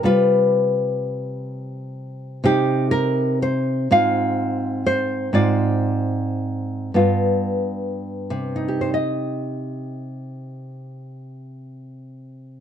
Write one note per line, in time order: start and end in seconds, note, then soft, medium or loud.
0.03 2.41 C3 soft
0.03 2.42 G3 soft
0.03 2.42 F4 soft
0.03 2.42 B4 medium
2.44 3.87 C3 medium
2.44 3.87 C4 soft
2.44 3.88 D#4 soft
2.44 2.90 G4 medium
2.91 3.40 A#4 medium
3.42 3.90 C5 medium
3.91 5.31 G#2 medium
3.91 5.31 C4 soft
3.91 5.31 F4 soft
3.91 4.83 F5 medium
4.87 5.33 C5 medium
5.33 6.91 G#2 soft
5.33 6.91 C4 soft
5.33 6.92 F4 soft
5.33 8.89 D5 medium
6.94 8.89 G2 soft
6.94 8.68 B3 soft
6.94 8.81 F4 soft
8.30 12.60 C3 soft
8.56 12.60 D#4 soft
8.68 12.60 G4 soft
8.81 8.93 C5 soft
8.94 12.60 D#5 soft